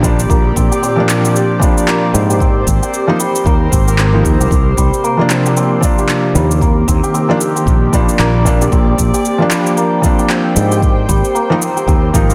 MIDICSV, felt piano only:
0, 0, Header, 1, 2, 480
1, 0, Start_track
1, 0, Tempo, 526316
1, 273, Time_signature, 4, 2, 24, 8
1, 11259, End_track
2, 0, Start_track
2, 0, Title_t, "Felt piano"
2, 0, Program_c, 0, 0
2, 24, Note_on_c, 0, 53, 98
2, 33, Note_on_c, 0, 58, 88
2, 41, Note_on_c, 0, 62, 104
2, 170, Note_off_c, 0, 53, 0
2, 174, Note_off_c, 0, 58, 0
2, 179, Note_off_c, 0, 62, 0
2, 876, Note_on_c, 0, 53, 92
2, 895, Note_on_c, 0, 58, 82
2, 912, Note_on_c, 0, 62, 98
2, 1440, Note_off_c, 0, 53, 0
2, 1450, Note_off_c, 0, 58, 0
2, 1454, Note_on_c, 0, 53, 90
2, 1458, Note_off_c, 0, 62, 0
2, 1473, Note_on_c, 0, 58, 80
2, 1491, Note_on_c, 0, 62, 98
2, 2171, Note_off_c, 0, 53, 0
2, 2181, Note_off_c, 0, 58, 0
2, 2190, Note_off_c, 0, 62, 0
2, 2802, Note_on_c, 0, 53, 94
2, 2811, Note_on_c, 0, 58, 87
2, 2821, Note_on_c, 0, 63, 102
2, 2871, Note_off_c, 0, 53, 0
2, 2875, Note_off_c, 0, 58, 0
2, 2880, Note_off_c, 0, 63, 0
2, 3765, Note_on_c, 0, 53, 71
2, 3773, Note_on_c, 0, 58, 69
2, 3782, Note_on_c, 0, 63, 79
2, 4097, Note_off_c, 0, 53, 0
2, 4101, Note_off_c, 0, 58, 0
2, 4105, Note_off_c, 0, 63, 0
2, 4716, Note_on_c, 0, 53, 88
2, 4734, Note_on_c, 0, 58, 85
2, 4753, Note_on_c, 0, 62, 98
2, 5280, Note_off_c, 0, 53, 0
2, 5289, Note_off_c, 0, 58, 0
2, 5295, Note_on_c, 0, 53, 89
2, 5299, Note_off_c, 0, 62, 0
2, 5313, Note_on_c, 0, 58, 83
2, 5331, Note_on_c, 0, 62, 100
2, 6012, Note_off_c, 0, 53, 0
2, 6021, Note_off_c, 0, 58, 0
2, 6030, Note_off_c, 0, 62, 0
2, 6645, Note_on_c, 0, 53, 92
2, 6654, Note_on_c, 0, 58, 89
2, 6664, Note_on_c, 0, 62, 108
2, 6712, Note_off_c, 0, 53, 0
2, 6717, Note_off_c, 0, 58, 0
2, 6722, Note_off_c, 0, 62, 0
2, 7226, Note_on_c, 0, 53, 91
2, 7237, Note_on_c, 0, 58, 82
2, 7244, Note_on_c, 0, 62, 108
2, 7686, Note_off_c, 0, 53, 0
2, 7691, Note_off_c, 0, 58, 0
2, 7695, Note_off_c, 0, 62, 0
2, 7706, Note_on_c, 0, 53, 104
2, 7715, Note_on_c, 0, 58, 95
2, 7725, Note_on_c, 0, 62, 115
2, 7851, Note_off_c, 0, 53, 0
2, 7855, Note_off_c, 0, 58, 0
2, 7860, Note_off_c, 0, 62, 0
2, 8557, Note_on_c, 0, 53, 91
2, 8575, Note_on_c, 0, 58, 83
2, 8592, Note_on_c, 0, 62, 100
2, 9121, Note_off_c, 0, 53, 0
2, 9130, Note_off_c, 0, 58, 0
2, 9136, Note_on_c, 0, 53, 92
2, 9138, Note_off_c, 0, 62, 0
2, 9155, Note_on_c, 0, 58, 85
2, 9174, Note_on_c, 0, 62, 102
2, 9853, Note_off_c, 0, 53, 0
2, 9862, Note_off_c, 0, 58, 0
2, 9872, Note_off_c, 0, 62, 0
2, 10486, Note_on_c, 0, 53, 98
2, 10494, Note_on_c, 0, 58, 88
2, 10505, Note_on_c, 0, 63, 113
2, 10553, Note_off_c, 0, 53, 0
2, 10557, Note_off_c, 0, 58, 0
2, 10562, Note_off_c, 0, 63, 0
2, 11066, Note_on_c, 0, 53, 92
2, 11076, Note_on_c, 0, 58, 86
2, 11083, Note_on_c, 0, 63, 102
2, 11259, Note_off_c, 0, 53, 0
2, 11259, Note_off_c, 0, 58, 0
2, 11259, Note_off_c, 0, 63, 0
2, 11259, End_track
0, 0, End_of_file